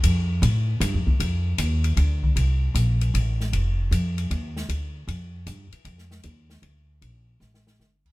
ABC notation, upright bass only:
X:1
M:3/4
L:1/8
Q:"Swing" 1/4=155
K:Bb
V:1 name="Upright bass" clef=bass
F,,2 A,,2 (3G,, F,, E,, | F,,2 E,,2 D,,2 | C,,2 B,,,2 A,,,2 | F,,,2 F,,2 E,,2 |
D,,2 F,,2 G,, z | F,,2 E,,2 D,,2 | B,,,2 A,,,2 G,,,2 |]